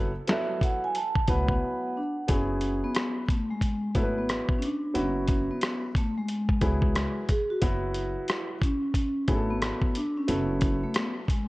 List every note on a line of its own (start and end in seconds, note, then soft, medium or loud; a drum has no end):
0.00 0.14 F#1 loud
0.00 0.10 A4 medium
0.27 0.97 F#3 medium
0.27 0.97 B3 medium
0.27 0.97 E4 medium
0.27 0.97 A4 medium
0.27 0.60 E5 medium
0.27 snare loud
0.27 closed hi-hat medium
0.61 0.83 F#5 medium
0.61 kick loud
0.61 closed hi-hat medium
0.84 0.97 G#5 loud
0.95 1.30 A5 loud
0.95 closed hi-hat medium
1.15 kick medium
1.27 1.54 C#2 loud
1.27 1.97 F#3 medium
1.27 1.50 A3 medium
1.27 1.97 B3 medium
1.27 1.97 E4 medium
1.27 1.97 B4 medium
1.27 2.25 F#5 medium
1.27 kick medium
1.27 closed hi-hat medium
1.48 1.98 B3 medium
1.48 kick loud
1.97 2.12 D4 medium
2.27 2.81 F#1 medium
2.27 3.21 F#3 medium
2.27 3.21 B3 medium
2.27 2.85 C#4 medium
2.27 3.21 E4 medium
2.27 3.21 G#4 medium
2.27 kick medium
2.27 closed hi-hat medium
2.61 closed hi-hat medium
2.84 3.31 B3 medium
2.95 cross-stick loud
2.95 closed hi-hat medium
3.28 3.48 A3 medium
3.28 kick loud
3.28 closed hi-hat medium
3.50 3.97 G#3 medium
3.61 kick medium
3.61 closed hi-hat medium
3.95 4.37 G#1 medium
3.95 4.63 F#3 medium
3.95 4.17 A3 medium
3.95 4.64 B3 medium
3.95 4.64 E4 medium
3.95 4.03 A4 medium
3.95 kick medium
3.95 closed hi-hat medium
4.03 4.67 B4 medium
4.18 4.59 B3 medium
4.29 cross-stick medium
4.29 closed hi-hat medium
4.49 kick medium
4.58 4.63 C#4 medium
4.58 closed hi-hat medium
4.65 4.97 D4 medium
4.94 5.48 F#1 medium
4.94 5.87 F#3 medium
4.94 5.88 B3 medium
4.94 5.88 E4 medium
4.94 5.88 F#4 medium
4.94 closed hi-hat medium
4.98 5.46 C#4 medium
5.28 kick medium
5.28 closed hi-hat medium
5.51 5.98 B3 medium
5.61 cross-stick loud
5.61 closed hi-hat medium
5.95 6.15 A3 medium
5.95 kick loud
5.95 closed hi-hat medium
6.18 7.13 G#3 medium
6.29 closed hi-hat medium
6.49 kick medium
6.61 7.04 C#2 medium
6.61 7.30 F#3 medium
6.61 7.30 B3 medium
6.61 7.30 E4 medium
6.61 7.31 G#4 medium
6.61 kick medium
6.61 closed hi-hat medium
6.82 kick medium
6.96 cross-stick medium
6.96 closed hi-hat medium
7.29 7.50 G#4 medium
7.29 kick medium
7.29 closed hi-hat medium
7.50 7.63 F#4 medium
7.61 8.14 F#1 medium
7.61 8.54 F#3 medium
7.61 8.55 B3 medium
7.61 8.55 E4 medium
7.61 8.66 E4 medium
7.61 8.55 F#4 medium
7.61 kick loud
7.61 closed hi-hat medium
7.94 closed hi-hat medium
8.28 cross-stick loud
8.28 closed hi-hat medium
8.62 9.31 C#4 medium
8.62 kick loud
8.62 closed hi-hat medium
8.94 kick medium
8.94 closed hi-hat medium
9.28 9.70 G#1 loud
9.28 9.97 F#3 medium
9.28 9.50 A3 medium
9.28 9.97 B3 medium
9.28 9.97 E4 medium
9.28 9.37 G#4 medium
9.28 kick medium
9.28 closed hi-hat medium
9.35 10.00 A4 medium
9.50 9.97 B3 medium
9.62 cross-stick medium
9.62 closed hi-hat medium
9.82 kick medium
9.95 10.15 D4 medium
9.95 closed hi-hat medium
10.17 10.79 C#4 medium
10.27 10.81 F#1 loud
10.27 11.21 F#3 medium
10.27 11.21 B3 medium
10.27 11.21 E4 medium
10.27 11.21 A4 medium
10.27 closed hi-hat medium
10.61 kick medium
10.61 closed hi-hat medium
10.83 10.96 A3 medium
10.94 11.11 B3 medium
10.94 cross-stick loud
10.94 closed hi-hat medium
11.28 11.48 G#3 medium
11.28 kick loud
11.28 closed hi-hat medium